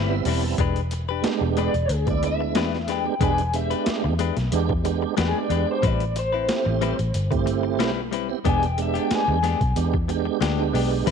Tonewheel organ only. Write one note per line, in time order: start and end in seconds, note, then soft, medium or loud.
0.00 0.24 E5 medium
0.09 0.58 G3 medium
0.09 0.58 B3 medium
0.09 0.59 C4 medium
0.09 0.59 E4 medium
0.25 0.56 A5 medium
1.22 1.74 G#3 medium
1.22 1.75 B3 medium
1.22 1.75 D4 medium
1.22 1.75 G4 medium
2.05 2.66 G#3 medium
2.05 2.66 B3 medium
2.05 2.67 D4 medium
2.05 2.67 E4 medium
3.05 3.14 G#3 medium
3.05 3.15 B3 medium
3.05 3.15 D4 medium
3.05 3.15 G4 medium
3.20 3.41 G#3 medium
3.20 3.41 B3 medium
3.20 3.42 D4 medium
3.20 3.42 G4 medium
3.53 4.14 G#3 medium
3.53 4.14 B3 medium
3.53 4.14 D4 medium
3.53 4.15 G4 medium
4.52 4.73 G#3 medium
4.52 4.73 B3 medium
4.52 4.73 D4 medium
4.52 4.74 G4 loud
4.84 5.15 G#3 medium
4.84 5.15 B3 medium
4.84 5.15 D4 medium
4.84 5.15 G4 medium
5.34 5.83 G#3 medium
5.34 5.83 B3 medium
5.34 5.83 D4 medium
5.34 5.83 G4 medium
6.48 6.99 A3 medium
6.48 6.99 C4 medium
6.48 7.00 E4 medium
6.48 7.00 G4 medium
7.31 7.91 A3 medium
7.31 7.91 C4 medium
7.31 7.92 E4 medium
7.31 7.92 G4 loud
8.29 8.39 B3 medium
8.29 8.39 C4 medium
8.29 8.39 E4 medium
8.29 8.40 G4 medium
8.45 8.66 G#3 medium
8.45 8.66 B3 medium
8.45 8.66 D4 medium
8.45 8.67 G4 medium
8.78 9.38 G#3 medium
8.78 9.39 B3 medium
8.78 9.39 D4 medium
8.78 9.39 G4 medium
9.76 9.97 G#3 medium
9.76 9.97 B3 medium
9.76 9.97 D4 medium
9.76 9.98 G4 medium
10.09 10.39 G#3 medium
10.09 10.39 B3 medium
10.09 10.40 D4 medium
10.09 10.40 G4 loud
10.58 11.06 G#3 medium
10.58 11.07 B3 medium
10.58 11.07 D4 medium
10.58 11.07 G4 medium